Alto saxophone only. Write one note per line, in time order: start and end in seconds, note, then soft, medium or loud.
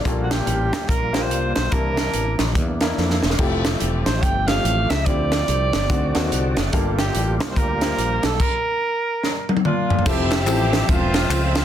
0.22 0.32 F#4 medium
0.31 0.90 G4 medium
0.89 1.24 A#4 medium
1.22 1.55 C5 loud
1.55 1.74 C5 loud
1.72 2.56 A#4 medium
4.06 4.24 C5 medium
4.23 4.49 G5 loud
4.47 4.91 F5 loud
4.89 5.07 E5 medium
5.05 6.57 D5 loud
6.99 7.38 G4 medium
7.51 7.59 C5 medium
7.58 8.27 A#4 loud
8.26 8.42 A4 medium
8.41 9.65 A#4 medium